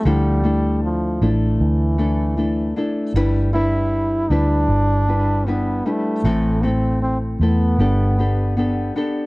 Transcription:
X:1
M:4/4
L:1/8
Q:1/4=78
K:Gmix
V:1 name="Nylon-string guitar"
[D,F,A,DEA] [A,DEA]2 [A,DEA]2 [A,DEA] [A,DEA] [A,DEA] | [G,DEB] [G,DEB]2 [G,DEB]2 [G,DEB] [G,DEB] [G,DEB] | [A,,E,A,CEA] [A,CEA]2 [A,EA] [G,B,DGA] [B,DGA] [B,DGA] [B,DGA] |]
V:2 name="Trombone"
G,2 F, z E,3 z | z E2 D3 B, A,- | A, C C B,4 z |]
V:3 name="Fingered electric bass" clef=bass
D,,3 A,,, D,,3 z | G,,,3 D,, G,,,3 z | A,,,3 E,, G,,,3 z |]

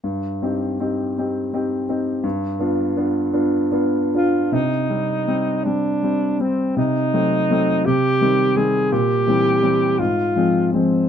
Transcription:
X:1
M:6/8
L:1/8
Q:3/8=54
K:Cm
V:1 name="Alto saxophone"
z6 | z4 z F | E3 D2 C | E3 G2 A |
G3 F2 C |]
V:2 name="Grand piano"
G,, [CEG] [CEG] [CEG] [CEG] [CEG] | G,, [=B,DF] [B,DF] [B,DF] [B,DF] [B,DF] | C, [G,C] [G,C] [G,C] [G,C] [G,C] | C, [_G,=A,C] [G,A,C] C, [E,=G,C] [E,G,C] |
B,, [=E,G,C] [E,G,C] A,, [F,A,C] [F,A,C] |]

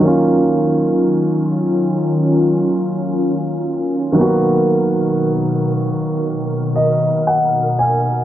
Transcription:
X:1
M:4/4
L:1/8
Q:"Swing 16ths" 1/4=58
K:Ebm
V:1 name="Grand piano"
z8 | z4 z ^d ^f a |]
V:2 name="Grand piano"
[E,G,B,DF]8 | [^D,^F,^A,=B,^F]8 |]
V:3 name="Analog synth pad" clef=bass
[E,G,DF]8 | [=B,,^D,^A]8 |]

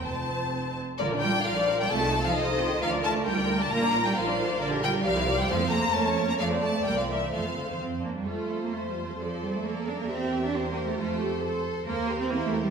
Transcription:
X:1
M:2/4
L:1/16
Q:1/4=133
K:Bb
V:1 name="Violin section"
a6 z2 | d2 g2 f3 g | a3 f e4 | f2 a2 g3 a |
b3 g f4 | [K:F] d2 g2 f3 g | f2 b2 a3 b | f2 a2 g f e2 |
f4 z4 | c8 | d4 d4 | e4 c4 |
c4 A4 | [K:Cdor] B2 c2 B2 c2 |]
V:2 name="Violin section"
a6 z2 | z4 d4 | A4 c4 | B4 B4- |
B4 c4 | [K:F] B4 d4 | c4 _d4 | d8 |
c6 z2 | A4 c4 | c4 B4- | B4 B4 |
A4 c4 | [K:Cdor] c2 B2 c2 B2 |]
V:3 name="Viola section"
[Cc]6 z2 | [FB] [Dd] [FB] [Dd] [FB] [Dd] [FB] [Dd] | [CF] [EA] [CF] [EA] [CF] [EA] [CF] [EA] | [FB] [Dd] [FB] [Dd] [FB] [Dd] [FB] [Dd] |
[FB] [Dd] [FB] [Dd] [FB] [Dd] [FB] [Dd] | [K:F] [FB] [DG] [FB] [DG] [GB] [Ec] [GB] [Ec] | [A,A] [Cc] [A,A] [Cc] [B,B] [_D_d] [B,B] [Dd] | [A,A] [Cc] [A,A] [Cc] [B,B] [Cc] [B,B] [Cc] |
[A,A] [Cc] [A,A] [Cc] C2 D2 | F4 F4 | A8 | G8 |
F2 G2 A4 | [K:Cdor] B2 G2 =E2 G2 |]
V:4 name="Cello section" clef=bass
F,,6 z2 | D,2 G,2 F,3 G, | A,3 F, E,4 | F,2 A,2 G,3 A, |
B,3 G, F,4 | [K:F] D,2 G,2 F,3 G, | F,2 B,2 A,3 B, | F,2 A,2 G, F, E,2 |
F,2 D, _E, F,2 B, G, | A,3 B, (3A,2 G,2 F,2 | F,2 G, A, B,2 D B, | C3 D (3C2 B,2 A,2 |
A,2 z6 | [K:Cdor] B,3 C (3B,2 A,2 G,2 |]
V:5 name="Double bass section" clef=bass
F,,,6 z2 | B,,,4 B,,,4 | C,,4 C,,4 | D,,4 D,,4 |
B,,,4 B,,,4 | [K:F] B,,,4 C,,4 | F,,4 F,,4 | F,,4 C,,4 |
F,,4 F,,4 | F,,8- | F,,8 | E,,8 |
F,,8 | [K:Cdor] E,,4 =E,,4 |]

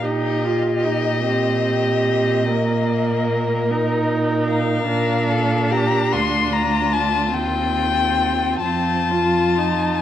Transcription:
X:1
M:12/8
L:1/8
Q:3/8=49
K:Eblyd
V:1 name="Violin"
e8- e2 z f- | f2 b c' b a g3 a3 |]
V:2 name="Violin"
G3 G3 B6 | B A G F6 F3 |]
V:3 name="Viola"
E F E C3 B,3 E3 | D6 C3 C F E |]
V:4 name="Cello" clef=bass
B,,12 | B,,3 D,,3 E,,3 F,,3 |]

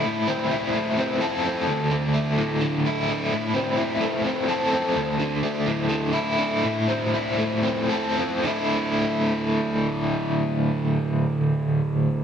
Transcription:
X:1
M:7/8
L:1/8
Q:1/4=126
K:Am
V:1 name="Overdriven electric guitar"
A,, C E A, C A C | D,, D, A, A,, D, E D, | A,, C E A, C A C | D,, D, A, A,, D, E D, |
A,, C E A, C A C | [D,,A,,D,A,E]6- [D,,A,,D,A,E]- | [D,,A,,D,A,E]6- [D,,A,,D,A,E] |]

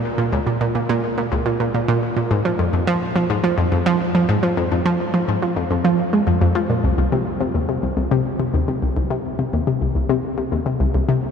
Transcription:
X:1
M:4/4
L:1/16
Q:1/4=106
K:Cphr
V:1 name="Synth arpeggio sound" clef=bass
z B,, D,, B,, B,, B,, B,, z B,, D,, B,, B,, B,, B,, z B,, | A,, F, F,, F,, F, z F, A,, F, F,, F,, F, z F, A,, F, | F,, F,, F, z F, A,, F, F,, F,, F, z A, F,, F,, F, B,, | C,, C,, C, z C, E,, C, C,, C,, C, z C, E,, C, C,, C,, |
C, z C, E,, C, C,, C,, C, z C, E,, C, C,, C,, C, z |]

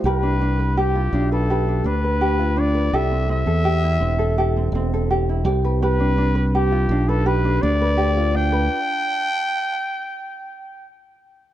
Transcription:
X:1
M:4/4
L:1/16
Q:1/4=83
K:Gmix
V:1 name="Trumpet"
B4 G3 A3 B4 d2 | e2 e8 z6 | B4 G3 A B2 d4 g2- | g12 z4 |]
V:2 name="Ukulele"
[GB] D D B G F D B [GB] D D B G F D B | [GA] C C A G E C A [GA] C C A G E G B | [GB] D D B G F D B [GB] D D B G F D B | z16 |]
V:3 name="Fingered electric bass" clef=bass
C,,6 B,,,4 D,,6 | C,,3 E,,3 E,,,4 E,,,4 C,,2- | C,,6 B,,,4 D,,6 | z16 |]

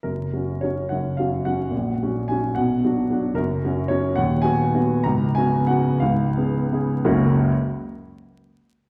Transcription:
X:1
M:6/8
L:1/8
Q:3/8=70
K:F#
V:1 name="Grand piano"
A2 c f e f- | f2 g f3 | A2 c f g2 | a g f e3 |
[F,,,C,,F,A,CFf] z4 z |]
V:2 name="Grand piano" clef=bass
[F,,,F,,] [F,CF] [F,CF] [F,,,F,,] [F,CF] [F,CF] | [A,,,A,,] [F,CF] [F,CF] [B,,,B,,] [F,=DF] [F,DF] | [F,,,F,,] [F,CF] [F,CF] [D,,,D,,] [F,B,F] [F,B,F] | [C,,,C,,] [C,B,F] [C,B,F] [C,,,C,,] [C,B,G] [C,B,G] |
z6 |]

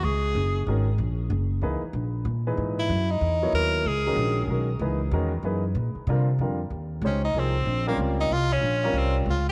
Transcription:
X:1
M:3/4
L:1/8
Q:"Swing" 1/4=188
K:F#mix
V:1 name="Tenor saxophone"
G4 z2 | z6 | z4 z E- | E D3 A2 |
G4 z2 | z6 | z6 | [K:Ebmix] z2 D E C2- |
C B, z E F D- | D2 C z F z |]
V:2 name="Grand piano"
z4 [D,G,CFA] z | z4 [E,A,DGB] z | z3 [A,,E,DGB]3 | z3 [F,B,EAc]3 |
z [D,G,CFA]3 [D,G,CFA] z | [E,A,DGB] z [D,G,CFA] z [E,A,DGB] z | z2 [=D,=G,^B,^EA] z [D,G,B,EA] z | [K:Ebmix] z2 [A,DEGc] z [F,B,CEA] z |
z [G,CDFB]3 z2 | z [G,CDFB]3 z2 |]
V:3 name="Upright bass" clef=bass
C,,2 F,,,2 G,,,2 | A,,,2 F,,,2 C,, z | A,,,2 A,,2 G,,2 | F,,2 E,,2 D,,2 |
C,,2 A,,,2 B,,,2 | C,,2 E,,2 F,,2 | A,, z ^B,,2 ^E,,2 | [K:Ebmix] E,,2 D,,2 C,,2 |
B,,,2 D,,2 C,,2 | B,,,2 C,,2 D,,2 |]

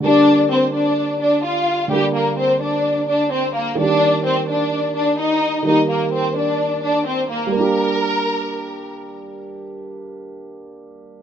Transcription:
X:1
M:4/4
L:1/8
Q:1/4=128
K:Gm
V:1 name="Violin section"
[Dd]2 [Cc] [Dd]2 [Dd] [Ff]2 | [G,G] [B,B] [Cc] [Dd]2 [Dd] [Cc] [B,B] | [Dd]2 [Cc] [Dd]2 [Dd] [Ee]2 | [Ee] [B,B] [Cc] [Dd]2 [Dd] [Cc] [B,B] |
B6 z2 | z8 |]
V:2 name="Grand piano"
[D,G,B,DG]8 | [D,G,B,DG]8 | [E,G,B,G]8 | [E,G,B,G]8 |
[G,B,DG]8- | [G,B,DG]8 |]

